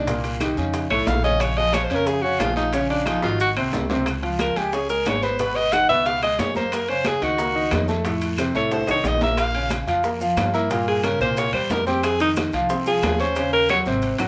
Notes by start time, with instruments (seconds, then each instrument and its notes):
Already playing: upright bass C2, alto saxophone D4
0.07 grand piano A#2 A#3 A#4, high bongo, high conga, high timbale, long guiro, maracas
0.24 high bongo, high conga, high timbale, maracas
0.40 grand piano D#3 D#4 G4, high bongo, high conga, high timbale, low timbale, short guiro, claves, maracas
0.57 upright bass F2, grand piano C#3 C#4 D#4, high bongo, high conga, short guiro, maracas
0.73 high bongo, high conga, high timbale, long guiro, maracas
0.90 upright bass B1, grand piano A2 A3 A4, alto saxophone C#5, high conga, high timbale, claves
1.07 upright bass A#1, alto saxophone F5, high bongo, low bongo, high conga, low timbale, short guiro, maracas
1.23 grand piano C#3 C#4 C#5, alto saxophone D#5, high bongo, high conga, short guiro, maracas
1.40 alto saxophone C#5, high bongo, high conga, high timbale, long guiro, claves, maracas
1.57 grand piano F3 F4 G#4, alto saxophone D#5, high conga, high timbale
1.73 alto saxophone C#5, high bongo, high conga, high timbale, low timbale, short guiro, claves, maracas
1.84 alto saxophone C5
1.90 upright bass F2, grand piano C#3 C#4 C#5, high conga, high timbale, short guiro, maracas
1.95 alto saxophone A#4
2.06 alto saxophone G#4, high bongo, high conga, long guiro, maracas
2.22 grand piano C#3 C#4 C#5, alto saxophone F#4, high conga
2.39 upright bass A#1, grand piano F3 F4 G#4, alto saxophone F4, high bongo, low bongo, high conga, high timbale, low timbale, short guiro, claves, maracas
2.56 alto saxophone D#4, high conga, short guiro, maracas
2.73 grand piano C#3 C#4 C#5, alto saxophone C#4, high bongo, high conga, high timbale, long guiro, maracas
2.90 alto saxophone D4, high bongo, high conga, high timbale
3.06 grand piano F3 F4 G#4, alto saxophone D#4, high bongo, high conga, high timbale, low timbale, short guiro, claves, maracas
3.22 upright bass G#1, grand piano D#3 D#4 F#4, alto saxophone F4, high bongo, high conga, short guiro, maracas
3.40 alto saxophone F#4, high conga, high timbale, long guiro, maracas
3.55 upright bass C2, grand piano C3 C4 C5, high conga, high timbale, claves
3.73 upright bass C#2, low bongo, high conga, low timbale, short guiro, maracas
3.90 grand piano C3 C4 C5, low bongo, high conga, short guiro, maracas
4.06 high bongo, high conga, high timbale, long guiro, claves, maracas
4.22 grand piano F3 F4 F5, high conga, high timbale
4.39 alto saxophone A#4, high bongo, high conga, high timbale, low timbale, short guiro, claves, maracas
4.56 upright bass C#2, grand piano G#3 G#4 G#5, alto saxophone G4, high conga, high timbale, short guiro, maracas
4.72 grand piano C#4 C#5 C#6, alto saxophone G#4, high bongo, high conga, long guiro, maracas
4.89 grand piano G#3 G#4 G#5, alto saxophone A#4, high conga, maracas
5.05 upright bass G#1, alto saxophone C#5, high bongo, low bongo, high conga, high timbale, low timbale, short guiro, claves, maracas
5.23 grand piano B3 B4 B5, alto saxophone C5, short guiro, maracas
5.39 grand piano B2 B3 B4, alto saxophone B4, high bongo, high conga, high timbale, long guiro, maracas
5.56 alto saxophone D#5, high bongo, high conga, high timbale
5.72 grand piano D#3 D#4 D#5, alto saxophone F#5, high bongo, high conga, high timbale, low timbale, short guiro, claves, maracas
5.89 upright bass C#2, grand piano B2 B3 B4, alto saxophone E5, high bongo, high conga, short guiro, maracas
6.05 alto saxophone F5, high bongo, high conga, high timbale, long guiro, maracas
6.22 grand piano G#3 G#4 G#5, alto saxophone D#5, high conga, high timbale, claves
6.39 upright bass F#2, alto saxophone C#5, high bongo, low bongo, high conga, low timbale, short guiro, maracas
6.55 grand piano A#3 A#4 A#5, alto saxophone C5, high bongo, high conga, short guiro, maracas
6.72 alto saxophone A#4, high bongo, high conga, high timbale, long guiro, claves, maracas
6.88 grand piano C#3 C#4 C#5, alto saxophone C5, high conga, high timbale
7.05 alto saxophone G#4, high bongo, high conga, high timbale, low timbale, short guiro, claves, maracas
7.22 upright bass C#2, grand piano D#3 D#4 D#5, alto saxophone F#4, high conga, high timbale, short guiro, maracas
7.38 grand piano A#3 A#4 A#5, high bongo, high conga, long guiro, maracas
7.55 grand piano D#3 D#4 D#5, high conga
7.71 upright bass F2, high bongo, low bongo, high conga, high timbale, low timbale, short guiro, claves, maracas
7.88 grand piano A3 A4 A5, short guiro, maracas
8.05 grand piano A2 A3 A4, high bongo, high timbale, long guiro, maracas
8.21 high bongo, high conga, high timbale, maracas
8.38 grand piano C3 C4 C5, high bongo, high conga, high timbale, low timbale, short guiro, claves, maracas
8.54 upright bass C2, grand piano A2 A3 A4, alto saxophone C#5, high bongo, high conga, short guiro, maracas
8.71 alto saxophone C5, high bongo, high conga, high timbale, long guiro, maracas
8.87 upright bass C2, grand piano D#3 D#4 D#5, alto saxophone C#5, high bongo, high conga, high timbale, claves, maracas
9.04 upright bass A#1, alto saxophone D#5, high bongo, high conga, low timbale, short guiro, maracas
9.21 grand piano A#3 A#4 A#5, alto saxophone E5, low bongo, high conga, low timbale, short guiro, maracas
9.37 alto saxophone F5, high bongo, high conga, high timbale, long guiro, claves, maracas
9.54 grand piano C#3 C#4 C#5, high conga, high timbale
9.70 high bongo, high conga, high timbale, low timbale, short guiro, claves, maracas
9.87 upright bass F2, grand piano F3 F4 F5, high conga, high timbale, short guiro, maracas
10.03 grand piano A#3 A#4 A#5, high bongo, high conga, long guiro, maracas
10.21 grand piano F3 F4 F5, high conga, maracas
10.37 upright bass G2, high bongo, low bongo, high conga, high timbale, low timbale, short guiro, claves, maracas
10.54 grand piano A#3 A#4 A#5, alto saxophone E4, short guiro, maracas
10.70 grand piano A#2 A#3 A#4, alto saxophone F4, high bongo, high conga, high timbale, long guiro, maracas
10.87 alto saxophone G#4, high bongo, high conga, high timbale
11.03 grand piano C#3 C#4 C#5, alto saxophone A#4, high bongo, high conga, high timbale, low timbale, short guiro, claves, maracas
11.20 upright bass C2, grand piano A#2 A#3 A#4, alto saxophone C5, high bongo, high conga, short guiro, maracas
11.37 alto saxophone C#5, high bongo, high conga, high timbale, long guiro, maracas
11.53 upright bass E2, grand piano G3 G4 G5, alto saxophone C5, high conga, high timbale, claves
11.70 upright bass F2, alto saxophone A#4, high bongo, low bongo, high conga, low timbale, short guiro, maracas
11.87 grand piano C4 C5 C6, alto saxophone G4, high bongo, high conga, short guiro, maracas
12.03 alto saxophone G#4, high bongo, high conga, high timbale, long guiro, claves, maracas
12.20 grand piano D#3 D#4 D#5, alto saxophone D#4, high conga, high timbale, maracas
12.36 high bongo, high conga, high timbale, low timbale, short guiro, claves, maracas
12.52 upright bass C2, grand piano F3 F4 F5, high conga, high timbale, short guiro, maracas
12.69 grand piano C4 C5 C6, high bongo, long guiro, maracas
12.86 grand piano F3 F4 F5, alto saxophone G#4, high conga, maracas
13.02 upright bass D#2, high bongo, low bongo, high conga, high timbale, low timbale, short guiro, claves, maracas
13.19 grand piano C#4 C#5 C#6, alto saxophone C5, short guiro, maracas
13.36 grand piano C#3 C#4 C#5, high bongo, high timbale, long guiro, maracas
13.53 alto saxophone A#4, high conga, high timbale
13.69 grand piano F#3 F#4 F#5, alto saxophone C#5, high bongo, high conga, high timbale, low timbale, short guiro, claves, maracas
13.85 upright bass G#1, grand piano C3 C4 C5, high conga, short guiro, maracas
14.02 high conga, high timbale, long guiro, maracas
14.18 upright bass G#1, grand piano F#3 F#4 F#5, low bongo, high conga, high timbale, claves, maracas